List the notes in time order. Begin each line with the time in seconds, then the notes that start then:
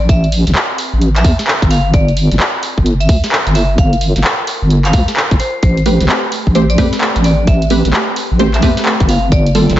Already playing: C4 B4 G5 A5
0.09 A1 E5, kick, closed hi-hat
0.24 closed hi-hat
0.32 open hi-hat
0.47 A1, snare, closed hi-hat
0.55 clap
0.78 open hi-hat
0.93 A1
1.01 closed hi-hat
1.16 E5, clap, closed hi-hat
1.24 E2, kick, open hi-hat
1.39 snare, closed hi-hat
1.47 clap
1.62 G1, kick, closed hi-hat
1.71 F4 F5, open hi-hat
1.89 A#4
1.94 G1 D5, kick, closed hi-hat
2.08 closed hi-hat
2.17 open hi-hat
2.31 G1, snare, closed hi-hat
2.40 clap
2.63 open hi-hat
2.78 G1, kick
2.86 closed hi-hat
3.00 E5, closed hi-hat
3.09 D2, kick, open hi-hat
3.24 snare, closed hi-hat
3.32 clap
3.47 G1, closed hi-hat
3.55 E5, open hi-hat
3.78 G1 F5, kick, closed hi-hat
3.93 closed hi-hat
4.01 open hi-hat
4.16 G1, snare, closed hi-hat
4.24 clap
4.47 open hi-hat
4.62 G1
4.70 closed hi-hat
4.85 F5, clap, closed hi-hat
4.93 D2, kick, open hi-hat
5.08 snare, closed hi-hat
5.17 clap
5.31 G1, kick, closed hi-hat
5.40 C5, open hi-hat
5.63 A1 C4 C5, kick, closed hi-hat
5.77 B4, closed hi-hat
5.86 A3 C4 G4 B4, open hi-hat
6.00 A1, snare, closed hi-hat
6.09 G5, clap
6.18 A5
6.32 open hi-hat
6.47 A1, kick
6.55 A3 C4 G4 C5, closed hi-hat
6.70 D5, closed hi-hat
6.78 E2 A3 C4 G4 B4, kick, open hi-hat
6.93 snare, closed hi-hat
7.01 clap
7.16 A1, closed hi-hat
7.24 D5, open hi-hat
7.47 A1 E5, kick, closed hi-hat
7.62 closed hi-hat
7.70 A3 C4 G4 B4, open hi-hat
7.85 A1, snare, closed hi-hat
7.93 clap
8.16 open hi-hat
8.31 A1
8.39 A3 C4 G4 C5, closed hi-hat
8.54 E5, clap, closed hi-hat
8.62 E2 A3 C4 G4 B4, kick, open hi-hat
8.77 snare, closed hi-hat
8.86 clap
9.00 G1, kick, closed hi-hat
9.09 F4 F5, open hi-hat
9.32 G1 A#3 D5, kick, closed hi-hat
9.46 closed hi-hat
9.55 G3 A#3 F4 A4, open hi-hat
9.70 G1, snare, closed hi-hat